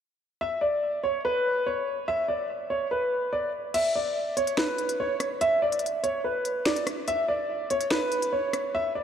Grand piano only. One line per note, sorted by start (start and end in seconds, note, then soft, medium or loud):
0.41 0.57 E5 loud
0.61 1.01 D5 medium
1.03 1.20 C#5 medium
1.25 1.64 B4 loud
1.66 2.05 C#5 medium
2.08 2.24 E5 loud
2.28 2.45 D5 medium
2.70 2.86 C#5 medium
2.91 3.30 B4 medium
3.33 3.49 D5 medium
3.74 3.91 E5 loud
3.95 4.34 D5 medium
4.37 4.53 C#5 medium
4.57 4.97 B4 medium
5.00 5.39 C#5 medium
5.41 5.57 E5 loud
5.62 5.78 D5 medium
6.03 6.20 C#5 medium
6.24 6.63 B4 medium
6.66 6.82 D5 loud
7.08 7.24 E5 loud
7.28 7.68 D5 medium
7.71 7.87 C#5 medium
7.91 8.30 B4 loud
8.33 8.72 C#5 medium
8.75 8.91 E5 loud
8.95 9.04 D5 medium